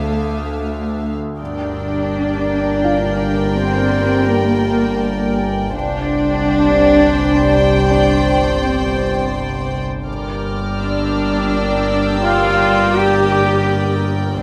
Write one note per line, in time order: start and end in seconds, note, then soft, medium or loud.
0.00 1.16 D2 soft
0.00 1.40 D2 medium
0.00 1.04 A3 soft
0.00 1.16 A4 medium
0.00 1.15 E5 soft
0.00 1.16 F5 medium
0.00 0.99 D6 soft
0.00 1.00 D#6 soft
1.39 5.70 G1 medium
1.39 5.70 G1 soft
1.39 5.70 G2 soft
1.39 5.70 G3 medium
1.39 5.69 A#3 medium
1.39 3.53 D4 medium
1.39 5.69 G4 medium
1.39 5.70 A#4 medium
1.39 3.52 D5 medium
1.39 5.70 D5 soft
1.39 5.70 G5 medium
2.84 4.97 F4 soft
2.84 4.97 F5 soft
3.57 4.28 C4 medium
3.57 4.31 C5 medium
4.29 5.38 A#3 medium
4.29 5.38 A#4 medium
5.72 10.03 G1 medium
5.72 9.84 C2 medium
5.72 9.71 G2 medium
5.72 9.71 G3 medium
5.72 9.71 C4 medium
5.72 7.86 D4 medium
5.72 9.71 G4 medium
5.72 9.83 C5 medium
5.72 9.83 D5 medium
5.72 7.87 D5 loud
5.72 9.83 G5 medium
7.90 8.61 D4 medium
7.90 8.63 D5 medium
7.90 10.03 D5 soft
8.61 9.71 C4 soft
8.61 9.70 C5 soft
10.06 14.37 G1 soft
10.06 14.37 G1 medium
10.06 14.37 G2 medium
10.06 14.37 G3 soft
10.06 14.37 A#3 medium
10.06 14.37 G4 medium
10.06 14.37 A#4 medium
10.06 14.37 D5 medium
10.06 14.37 G5 medium
10.06 14.01 D6 soft
10.06 12.56 F6 soft
10.79 12.20 D4 medium
10.79 12.20 D5 medium
10.79 13.21 E6 soft
12.24 12.96 F4 medium
12.24 12.96 F5 medium
12.24 14.37 G5 medium
12.95 14.05 G4 medium
12.95 14.04 G5 medium
13.21 14.01 D#6 soft
13.32 14.43 D6 medium
14.39 14.43 C5 medium
14.39 14.43 D5 loud